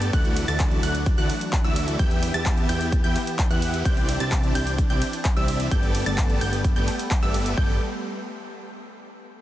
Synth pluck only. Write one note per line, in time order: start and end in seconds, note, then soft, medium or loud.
0.00 0.11 A6 medium
0.13 0.45 F#6 medium
0.48 0.80 A6 loud
0.83 0.99 F#6 loud
1.18 1.34 F#6 loud
1.64 1.97 E6 medium
1.99 2.31 G6 medium
2.34 2.66 A6 loud
2.69 2.85 G6 loud
3.04 3.20 G6 loud
3.51 3.83 F#6 medium
3.85 4.18 G6 medium
4.20 4.52 A6 medium
4.55 4.71 G6 loud
4.90 5.06 G6 loud
5.37 5.69 E6 medium
5.71 6.04 G6 medium
6.06 6.38 A6 loud
6.41 6.57 G6 loud
6.76 6.92 G6 medium
7.23 7.55 E6 medium
7.58 7.75 G6 loud